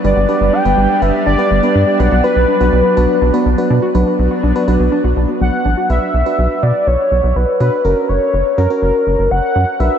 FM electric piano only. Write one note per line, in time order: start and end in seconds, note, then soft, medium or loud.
0.04 0.20 D4 medium
0.04 0.20 G4 medium
0.04 0.20 B4 medium
0.29 0.52 D4 medium
0.29 0.52 G4 medium
0.29 0.52 B4 medium
0.65 0.89 D4 medium
0.65 0.89 G4 medium
0.65 0.89 B4 medium
1.02 1.25 D4 medium
1.02 1.25 G4 medium
1.02 1.25 B4 medium
1.39 1.54 D4 medium
1.39 1.54 G4 medium
1.39 1.54 B4 medium
1.63 1.86 D4 medium
1.63 1.86 G4 medium
1.63 1.86 B4 medium
2.00 2.15 D4 medium
2.00 2.15 F#4 medium
2.00 2.15 B4 medium
2.24 2.47 D4 medium
2.24 2.47 F#4 medium
2.24 2.47 B4 medium
2.60 2.84 D4 medium
2.60 2.84 F#4 medium
2.60 2.84 B4 medium
2.97 3.20 D4 medium
2.97 3.20 F#4 medium
2.97 3.20 B4 loud
3.34 3.49 D4 medium
3.34 3.49 F#4 medium
3.34 3.49 B4 loud
3.58 3.81 D4 medium
3.58 3.81 F#4 medium
3.58 3.81 B4 loud
3.95 4.34 D4 medium
3.95 4.34 F#4 medium
3.95 4.34 B4 loud
4.56 4.63 D4 medium
4.56 4.63 F#4 medium
4.56 4.63 B4 loud
4.68 5.30 D4 medium
4.68 5.30 F#4 medium
4.68 5.30 B4 loud
5.90 6.13 D4 medium
5.90 6.13 F#4 medium
5.90 6.13 B4 medium
6.26 6.88 D4 medium
6.26 6.88 F#4 medium
6.26 6.88 B4 medium
7.60 7.76 D4 medium
7.60 7.76 F#4 medium
7.60 7.76 B4 medium
7.85 8.31 C#4 medium
7.85 8.31 F#4 medium
7.85 8.31 A#4 medium
8.58 8.66 C#4 medium
8.58 8.66 F#4 medium
8.58 8.66 A#4 medium
8.70 9.32 C#4 medium
8.70 9.32 F#4 medium
8.70 9.32 A#4 medium
9.80 9.98 D4 medium
9.80 9.98 F#4 medium
9.80 9.98 B4 medium